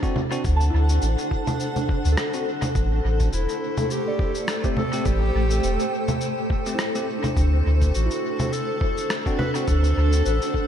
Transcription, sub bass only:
0.45 0.70 D2 loud
0.74 0.99 D2 loud
1.02 1.16 A1 medium
2.05 2.16 D2 loud
2.75 3.01 A1 loud
3.04 3.30 A1 loud
3.33 3.47 E1 medium
5.05 5.32 A1 medium
5.35 5.61 A1 loud
5.64 5.78 E1 medium
7.36 7.62 D2 loud
7.66 7.92 D2 loud
7.96 8.09 A1 medium
9.68 9.93 D2 loud
9.97 10.22 D2 loud
10.26 10.40 A1 medium

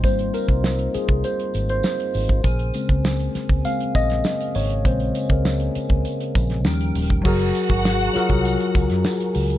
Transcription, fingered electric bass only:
0.04 0.29 G#1 loud
0.49 0.87 C2 medium
0.95 muted fingered electric bass stroke soft
1.09 1.22 C2 medium
1.55 1.80 G#1 loud
2.15 2.40 G#1 medium
2.44 2.70 A#1 loud
2.89 3.27 C#2 medium
3.35 muted fingered electric bass stroke soft
3.50 3.62 C#2 medium
3.95 4.20 A#1 medium
4.56 4.85 G#1 loud
4.85 5.10 A#1 loud
5.30 5.68 C#2 medium
5.76 muted fingered electric bass stroke medium
5.90 6.03 C#2 medium
6.36 6.66 A#1 loud
6.66 6.90 D#2 loud
6.95 7.20 D#1 loud
7.25 7.50 F#1 loud
7.70 8.08 G#1 medium
8.16 muted fingered electric bass stroke soft
8.30 8.55 C2 medium
8.75 8.88 C#2 medium
8.91 9.03 F#2 loud
9.36 9.58 C#2 medium

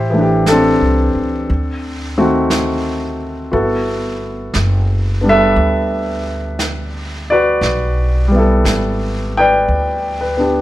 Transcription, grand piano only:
0.00 1.47 E4 medium
0.00 0.19 G4 medium
0.00 0.44 C5 medium
0.10 1.47 E3 soft
0.10 1.48 A3 soft
0.17 0.50 D4 soft
0.17 1.52 G4 medium
0.48 2.16 C4 soft
0.48 3.18 D4 medium
0.48 3.16 A4 medium
2.18 3.53 D#3 soft
2.18 3.52 A3 medium
2.18 3.52 C4 soft
2.18 3.50 F#4 medium
3.52 5.20 B3 soft
3.52 7.62 E4 soft
3.52 7.30 F#4 soft
3.52 5.27 A4 medium
5.21 7.63 G3 soft
5.21 7.61 B3 soft
5.21 7.62 D4 soft
5.29 7.27 A4 medium
5.29 7.28 B4 medium
5.29 7.38 E5 medium
7.30 9.32 F#4 medium
7.30 9.33 B4 medium
7.30 9.38 D5 medium
8.28 10.61 G3 medium
8.32 10.36 B3 soft
8.32 10.61 E4 soft
8.38 10.61 A4 medium
9.37 10.19 B4 medium
9.37 10.61 D5 medium
9.37 10.61 G5 medium
10.21 10.61 B4 soft
10.37 10.61 B3 soft
10.37 10.61 D4 soft
10.37 10.61 G4 soft

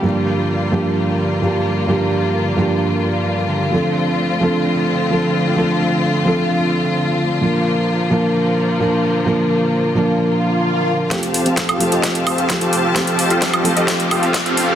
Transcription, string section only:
0.00 11.07 D3 medium
0.00 3.69 G3 medium
0.00 3.69 A#3 medium
0.00 11.07 F4 medium
3.73 7.38 A3 medium
3.73 7.38 C4 medium
7.42 11.08 F3 medium
7.42 11.08 A#3 medium
11.11 14.75 G4 medium
11.11 14.75 C5 medium
11.11 12.94 F5 medium
11.11 14.75 A5 medium
12.96 14.75 D#5 medium

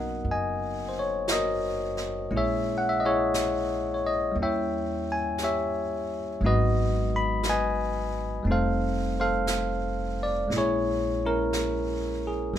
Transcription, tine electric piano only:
0.00 2.31 F#3 soft
0.00 2.30 A#3 soft
0.00 2.31 B3 soft
0.00 2.30 C#4 soft
0.00 2.32 D#4 medium
0.00 0.23 F#4 soft
0.00 1.32 A#4 soft
0.00 0.32 D#5 medium
0.00 0.31 F#5 medium
0.31 1.30 D#5 soft
0.31 0.89 G#5 medium
0.89 0.96 C5 soft
0.99 1.31 C#5 medium
1.32 2.29 F#4 soft
1.32 2.29 A#4 soft
1.32 2.35 D#5 medium
2.31 4.36 G#3 soft
2.31 4.34 A#3 soft
2.31 4.36 C#4 soft
2.31 3.04 E4 soft
2.36 3.05 G#4 medium
2.36 3.05 C#5 medium
2.36 2.74 E5 medium
2.78 2.88 F#5 medium
2.89 2.99 E5 medium
3.00 3.05 D#5 medium
3.05 4.35 E4 soft
3.05 4.35 G#4 soft
3.05 3.93 C#5 medium
3.05 3.07 E5 medium
3.94 4.03 C#5 soft
4.07 4.36 D#5 medium
4.32 6.38 G3 soft
4.32 6.40 A#3 soft
4.39 6.42 C#4 soft
4.39 6.44 E4 soft
4.39 5.10 E5 medium
4.39 6.40 G5 soft
4.43 5.42 C#5 soft
5.12 5.40 G#5 medium
5.43 6.39 G4 soft
5.43 6.39 C#5 medium
5.43 6.47 E5 medium
6.41 8.45 F#3 soft
6.41 8.46 G#3 soft
6.41 8.46 B3 soft
6.41 8.46 D#4 soft
6.46 8.43 F#4 medium
6.46 7.48 B4 medium
6.46 7.08 D#5 medium
7.16 7.44 B5 medium
7.49 8.44 B4 medium
7.49 8.44 D#5 medium
7.49 8.51 G#5 medium
8.43 10.49 G3 soft
8.43 10.49 A3 soft
8.43 10.50 C4 soft
8.47 10.51 D#4 soft
8.47 9.20 A4 medium
8.47 9.19 C5 medium
8.52 9.19 F5 medium
9.20 10.50 A4 medium
9.20 10.49 C5 medium
9.20 10.15 F5 medium
10.23 10.54 D5 medium
10.48 12.54 G#3 soft
10.48 12.54 A#3 soft
10.48 11.26 C#4 soft
10.53 10.56 E4 soft
10.53 12.26 G#4 medium
10.57 11.24 E4 medium
10.57 11.24 C#5 medium
11.26 12.55 C#4 medium
11.26 12.54 E4 soft
11.26 12.21 A#4 medium
12.27 12.56 G#4 medium
12.54 12.59 G3 soft
12.54 12.59 A#3 soft

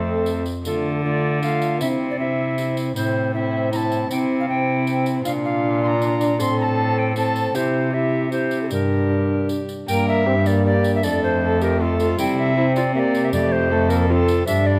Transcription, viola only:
0.00 0.44 C4 medium
0.65 1.01 F4 medium
1.04 1.42 F4 medium
1.42 1.83 F4 medium
1.81 2.19 E4 medium
2.20 2.95 E4 medium
2.96 3.33 E4 medium
3.34 3.71 E4 medium
3.72 4.10 E4 medium
4.11 4.48 E4 medium
4.48 5.24 E4 medium
5.25 6.41 F4 medium
6.39 7.16 A4 medium
7.17 7.56 A4 medium
7.55 7.92 G4 medium
7.93 8.31 G4 medium
8.32 8.70 G4 medium
8.70 9.67 G4 medium
9.88 10.28 A#4 medium
10.26 10.64 G4 medium
10.65 11.02 G4 medium
11.04 11.41 A4 medium
11.43 11.63 A4 medium
11.62 11.83 G4 medium
11.81 11.99 F4 medium
12.00 12.20 F4 medium
12.19 12.57 E4 medium
12.57 12.65 E4 medium
12.76 12.84 F4 medium
12.95 13.73 G4 medium
13.71 14.12 A4 medium
14.10 14.47 F4 medium
14.48 14.79 D4 medium

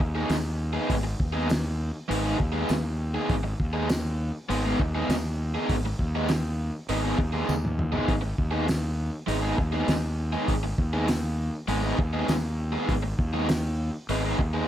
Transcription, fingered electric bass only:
0.00 0.24 D#2 medium
0.30 0.77 D#2 medium
0.90 1.13 G#1 medium
1.20 1.90 D#2 loud
2.10 2.33 G#1 medium
2.40 2.64 D#2 medium
2.70 3.17 D#2 loud
3.29 3.53 G#1 loud
3.60 4.30 D#2 loud
4.50 4.73 G#1 medium
4.80 5.03 D#2 medium
5.09 5.56 D#2 medium
5.69 5.93 G#1 loud
5.99 6.69 D#2 loud
6.89 7.13 G#1 medium
7.18 7.42 D#2 medium
7.49 7.96 D#2 medium
8.09 8.32 G#1 medium
8.38 9.09 D#2 loud
9.28 9.52 G#1 medium
9.59 9.82 D#2 medium
9.88 10.35 D#2 medium
10.48 10.72 G#1 loud
10.78 11.49 D#2 loud
11.68 11.92 G#1 medium
11.99 12.22 D#2 medium
12.28 12.76 D#2 medium
12.89 13.12 G#1 medium
13.19 13.89 D#2 loud
14.09 14.33 G#1 medium
14.39 14.62 D#2 medium

